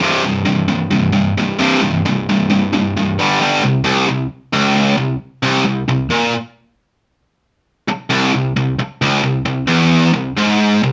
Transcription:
0.01 distorted electric guitar C2 G2 C3
0.24 distorted electric guitar C2 G2
0.46 distorted electric guitar C2 G2
0.68 distorted electric guitar C2 G2
0.91 distorted electric guitar C2 G2
1.13 distorted electric guitar C2 G2
1.38 distorted electric guitar C2 G2
1.59 distorted electric guitar C2 G2 C3
1.82 distorted electric guitar C2 G2
2.05 distorted electric guitar C2 G2
2.29 distorted electric guitar C2 G2
2.50 distorted electric guitar C2 G2
2.73 distorted electric guitar C2 G2
2.97 distorted electric guitar C2 G2
3.19 distorted electric guitar G2 D3 G3
3.40 distorted electric guitar G2 D3 G3
3.64 distorted electric guitar C2
3.84 distorted electric guitar C2
4.08 distorted electric guitar C2
4.53 distorted electric guitar C#2
4.97 distorted electric guitar C2
5.43 distorted electric guitar C2
5.65 distorted electric guitar C2
5.89 distorted electric guitar C2
6.10 distorted electric guitar A#2
7.89 muted distorted electric guitar stroke
8.10 distorted electric guitar C2
8.34 distorted electric guitar C2
8.56 distorted electric guitar C2
8.79 muted distorted electric guitar stroke
9.02 distorted electric guitar C#2
9.23 distorted electric guitar C2
9.46 distorted electric guitar C2
9.67 distorted electric guitar E2
10.13 distorted electric guitar C2
10.37 distorted electric guitar G#2
10.83 distorted electric guitar C2

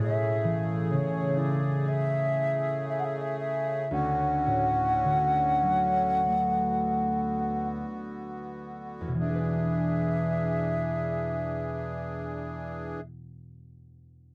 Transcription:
Already playing: harp A3 D4 F#4
0.00 harp A2, accordion C#3 A3 G#4, flute E5
0.44 harp E3
0.90 harp C#3, flute C#5
1.37 harp E4, flute D5
1.85 harp G#4, flute E5
2.89 flute E5
2.99 flute F#5
3.04 flute E5
3.17 flute D5
3.21 flute E5
3.39 flute E5
3.91 harp D2, accordion D3 C#4 F#4, flute F#5
4.46 harp A2
5.04 harp D3
5.63 harp F#3
6.25 harp A3, accordion B3
9.01 harp E2
9.07 harp B2
9.15 harp E3
9.19 accordion E3 D4 G#4, harp D4, flute E5
9.28 harp G#4
9.35 harp B4

